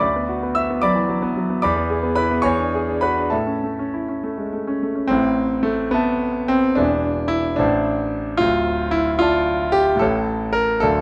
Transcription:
0.00 1.59 D2 medium
0.00 0.51 D5 medium
0.00 0.51 B5 medium
0.00 0.54 D6 medium
0.16 0.37 B3 soft
0.28 0.50 F#4 soft
0.43 0.64 B3 soft
0.55 0.78 F#4 medium
0.55 0.81 E5 medium
0.55 0.82 E6 loud
0.70 0.91 B3 medium
0.82 1.05 F#3 medium
0.82 1.59 D5 medium
0.82 1.59 B5 medium
0.82 1.61 D6 loud
0.95 1.09 E3 soft
1.09 1.31 F#3 medium
1.22 1.44 B3 medium
1.37 1.58 F#3 medium
1.50 1.63 B3 soft
1.62 2.43 E2 medium
1.62 2.13 D5 medium
1.62 2.13 B5 medium
1.62 2.17 D6 loud
1.76 1.98 B3 medium
1.90 2.12 G#4 medium
2.03 2.25 B3 medium
2.15 2.39 E4 medium
2.15 2.42 B4 medium
2.15 2.44 B5 loud
2.31 2.45 B3 medium
2.42 3.29 E2 medium
2.42 2.97 C#5 medium
2.42 2.97 G#5 medium
2.42 3.00 C#6 loud
2.59 2.82 D4 soft
2.75 2.97 G#4 medium
2.89 3.11 D4 medium
3.01 3.26 F#4 medium
3.01 3.30 B4 medium
3.01 3.31 B5 medium
3.18 3.32 D4 medium
3.30 5.08 A2 medium
3.30 4.18 A4 medium
3.30 4.18 E5 medium
3.30 4.21 A5 medium
3.47 3.71 C#4 soft
3.63 3.87 A3 soft
3.79 4.02 C#4 soft
3.94 4.17 E4 soft
4.09 4.32 C#4 soft
4.23 4.46 A3 medium
4.38 4.52 G#3 soft
4.53 4.76 A3 soft
4.67 4.91 C#4 medium
4.83 5.06 A3 soft
4.96 5.11 C#4 soft
5.07 6.74 A1 medium
5.07 6.74 A2 medium
5.07 5.65 C4 loud
5.63 5.93 A3 loud
5.91 6.49 B3 loud
5.91 6.73 A4 medium
5.91 6.74 E5 medium
5.91 6.74 A5 medium
6.48 6.77 C4 loud
6.75 7.57 E1 medium
6.75 7.57 E2 medium
6.75 7.31 D4 loud
6.75 7.55 B4 soft
6.75 7.56 E5 soft
6.75 7.56 G#5 soft
7.28 7.57 E4 loud
7.56 8.38 A1 medium
7.56 8.38 A2 medium
7.56 8.39 D4 loud
7.56 8.37 C5 medium
7.56 8.37 E5 medium
7.56 8.37 A5 medium
8.37 9.97 D1 medium
8.37 9.97 D2 medium
8.37 8.93 F4 loud
8.91 9.20 E4 loud
9.19 9.73 F4 loud
9.19 9.97 D5 medium
9.19 9.97 F5 medium
9.19 9.98 A5 medium
9.72 10.00 G4 loud
9.96 10.76 A2 medium
9.96 10.54 A4 loud
10.01 10.79 A1 medium
10.01 10.78 C#5 medium
10.01 10.78 G5 medium
10.01 10.78 A5 soft
10.53 10.80 A#4 loud
10.80 11.01 D1 medium
10.80 11.01 D2 medium
10.80 11.01 A4 loud
10.80 11.01 D5 medium
10.80 11.01 F5 medium
10.80 11.01 A5 medium

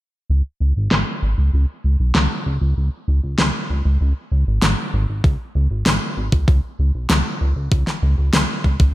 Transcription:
0.30 0.42 C#2 loud
0.60 0.73 C#2 medium
0.76 0.89 G#1 medium
0.91 1.04 G#1 loud
0.91 snare loud
1.22 1.35 G#1 medium
1.38 1.50 C#2 medium
1.53 1.66 C#2 loud
1.84 1.97 C#2 medium
2.00 2.12 B1 medium
2.15 2.28 C#2 loud
2.15 snare loud
2.46 2.59 C#2 medium
2.61 2.74 C#2 medium
2.77 2.89 C#2 medium
3.08 3.20 C#2 medium
3.23 3.36 C#2 medium
3.38 3.51 C#2 loud
3.38 snare loud
3.70 3.82 C#2 medium
3.85 3.98 C#2 medium
4.01 4.13 C#2 loud
4.32 4.44 C#2 medium
4.47 4.60 G#1 medium
4.62 4.75 G#1 medium
4.62 snare loud
4.93 5.06 G#1 medium
5.09 5.22 G#1 medium
5.24 5.37 C#2 loud
5.24 kick loud
5.55 5.68 C#2 medium
5.71 5.83 G#1 medium
5.86 5.99 G#1 loud
5.86 snare loud
6.17 6.30 G#1 medium
6.32 6.45 C#2 medium
6.32 kick loud
6.48 6.61 C#2 medium
6.48 kick loud
6.79 6.92 C#2 medium
6.94 7.07 B1 medium
7.10 7.22 C#2 loud
7.10 snare loud
7.41 7.53 C#2 medium
7.56 7.69 C#2 medium
7.72 7.84 C#2 medium
7.72 kick loud
7.87 snare soft
8.03 8.15 C#2 medium
8.18 8.31 C#2 medium
8.33 8.46 C#2 loud
8.33 snare loud
8.64 8.77 C#2 medium
8.64 kick medium
8.80 8.93 C#2 medium
8.80 kick loud

